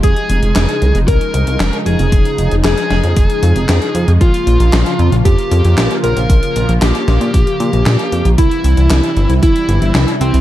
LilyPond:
<<
  \new Staff \with { instrumentName = "Lead electric guitar" } { \time 4/4 \key des \lydian \tempo 4 = 115 aes'2 bes'4. aes'8~ | aes'4 aes'2. | f'2 g'4. bes'8~ | bes'4 g'2. |
e'2 e'4. c'8 | }
  \new Staff \with { instrumentName = "Synth bell" } { \time 4/4 \key des \lydian aes'2 bes'4. aes'8~ | aes'4 aes'2. | f'2 g'4. bes'8~ | bes'4 g'2. |
e'2 e'4. c'8 | }
  \new Staff \with { instrumentName = "Analog synth pad" } { \clef bass \time 4/4 \key des \lydian << { <des aes ees'>1~ | <des aes ees'>1 | <des bes f'>1~ | <des bes f'>1 |
<c g e'>1 | } \\ { f1~ | f1~ | f1~ | f1 |
e1 | } >> }
  \new Staff \with { instrumentName = "Analog synth bass" } { \clef bass \time 4/4 \key des \lydian f,,16 r16 f,,16 f,,16 f,,16 r16 c,16 f,,16 c,16 r16 c,16 c,16 f,,16 r16 f,,16 f,,16 | f,,16 r16 f,,16 f,,16 f,,16 r16 f,,16 f,16 f,,16 r16 f,16 f,,16 f,16 r16 f,16 f,16 | bes,,16 r16 bes,,16 bes,,16 bes,,16 r16 f,16 bes,,16 f,16 r16 f,16 f,16 bes,,16 r16 bes,,16 bes,,16 | bes,,16 r16 bes,,16 bes,,16 bes,,16 r16 bes,,16 bes,16 bes,,16 r16 bes,16 bes,,16 bes,16 r16 f,16 bes,,16 |
c,16 r16 c,16 c,16 c,16 r16 g,,16 c,16 g,,16 r16 g,,16 g,,16 c,16 r16 c,16 c,16 | }
  \new DrumStaff \with { instrumentName = "Drums" } \drummode { \time 4/4 <hh bd>16 hh16 hh16 hh16 <hc hh sn>16 hh16 hh16 hh16 <hh bd>16 hh16 hh16 hh16 <hc hh sn>16 hh16 hh16 hh16 | <hh bd>16 hh16 hh16 hh16 <hc hh sn>16 hh16 <hh sn>16 hh16 <hh bd>16 hh16 hh16 hh16 <hc hh sn>16 hh16 hh16 hh16 | <hh bd>16 hh16 hh16 hh16 <hc hh sn>16 hh16 hh16 hh16 <hh bd>16 hh16 hh16 hh16 <hc hh sn>16 hh16 hh16 hh16 | <hh bd>16 hh16 hh16 hh16 <hc hh sn>16 hh16 <hh sn>16 hh16 <hh bd>16 hh16 hh16 hh16 <hc hh sn>16 hh16 hh16 hh16 |
<hh bd>16 hh16 hh16 hh16 <hc hh sn>16 hh16 hh16 hh16 <hh bd>16 hh16 hh16 hh16 <hc hh sn>16 hh16 hh16 hh16 | }
>>